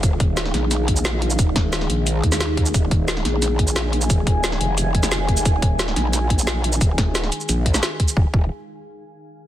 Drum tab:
HH |x-x-x-x-x-x-x-x-|x-x-x-x-x-x-x-x-|x-x-x-x-x-x-x-x-|x-x-x-x-x-x-x-x-|
SH |x---x---x--xx--x|x---x---x--xx--x|x---x---x--xx--x|x---x---x--xx--x|
SD |----ooo-o---o---|--o-oo-----oo---|----ooo-o---o---|----oo-----oo---|
BD |o-o-------o-----|o-o-------o---o-|o-o-------o-----|o-o-------o---o-|

HH |x-x-x-x-x-x-x-x-|x-x-x-x-x-x-x-x-|----------------|
SH |x---x---x--xx--x|x---x-xxx--xx--x|----------------|
SD |----ooo-o---o---|--o-oo-----oo---|----------------|
BD |o-o-------o-----|o-o-------o---o-|o-o-------------|